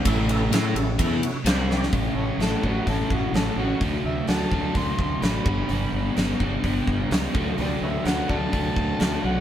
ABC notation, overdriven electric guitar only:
X:1
M:4/4
L:1/8
Q:1/4=127
K:Amix
V:1 name="Overdriven electric guitar" clef=bass
[A,,E,A,]2 [A,EA] [A,,E,] [E,B,E] z [=C,G,=C]2 | [A,,E,A,CE]2 [A,,E,A,CE] [A,,E,A,CE] [A,,E,A,CE]2 [A,,E,A,CE] [A,,E,A,CE] | [D,F,A,D]2 [D,F,A,D] [D,F,A,D] [D,F,A,D]2 [D,F,A,D] [G,,D,G,B,D] | [G,,D,G,B,D]2 [G,,D,G,B,D] [G,,D,G,B,D] [G,,D,G,B,D]2 [G,,D,G,B,D] [D,F,A,D] |
[D,F,A,D]2 [D,F,A,D] [D,F,A,D] [D,F,A,D]2 [D,F,A,D] [D,F,A,D] |]